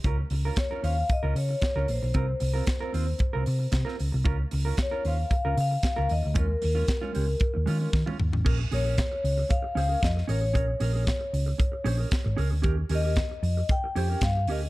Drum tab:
CC |----------------|----------------|----------------|----------------|
HH |x-o-x-o-x-o-x-o-|x-o-x-o-x-o-x-o-|x-o-x-o-x-o-x-o-|x-o-x-o-x-o-----|
SD |----o-------o---|----o-------oo--|----o-------o---|----o-------o---|
T1 |----------------|----------------|----------------|-------------o--|
T2 |----------------|----------------|----------------|--------------o-|
FT |----------------|----------------|----------------|---------------o|
BD |o---o---o---o---|o---o---o---o---|o---o---o---o---|o---o---o---o---|

CC |x---------------|----------------|----------------|
HH |--o-x-o-x-o-x-o-|x-o-x-o-x-o-x-o-|x-o-x-o-x-o-x-o-|
SD |----o-------oo--|----o-------o---|----o-------o---|
T1 |----------------|----------------|----------------|
T2 |----------------|----------------|----------------|
FT |----------------|----------------|----------------|
BD |o---o---o---o---|o---o---o---o---|o---o---o---o---|